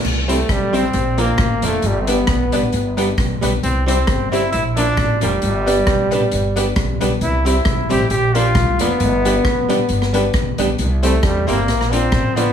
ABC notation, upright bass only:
X:1
M:4/4
L:1/8
Q:"Swing" 1/4=134
K:C
V:1 name="Upright bass" clef=bass
C,,2 B,,,2 _B,,,2 A,,, F,,, | G,,,2 B,,, A,,, G,,,2 B,,, B,,, | C,,2 G,,,2 _B,,,2 A,,, F,,, | G,,,2 B,,, A,,, G,,,2 B,,, B,,, |
C,,2 B,,, A,,, _B,,,2 C,, F,,, | G,,,2 B,,, A,,, G,,,2 B,,, B,,, | C,,2 E,, G,,, _B,,,2 A,,,2 |]